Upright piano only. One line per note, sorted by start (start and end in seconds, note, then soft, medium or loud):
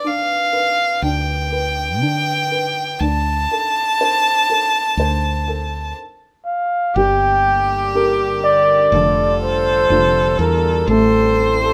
0.00 0.04 D4 soft
0.00 0.51 B4 soft
0.04 1.02 D4 soft
0.53 1.51 B4 soft
1.03 2.00 D4 soft
1.52 2.50 B4 soft
2.02 2.98 D4 soft
2.52 2.99 B4 soft
3.02 5.93 D4 soft
3.51 4.48 A4 soft
4.01 4.98 C5 soft
4.50 5.46 A4 soft
5.00 5.95 C5 soft
5.48 5.95 A4 soft
6.97 8.89 G3 medium
7.94 8.89 G4 soft
7.94 8.90 A4 soft
7.94 8.90 A#4 soft
8.93 10.85 D3 medium
9.90 10.85 D4 soft
9.90 10.86 F4 soft
10.89 11.73 A3 medium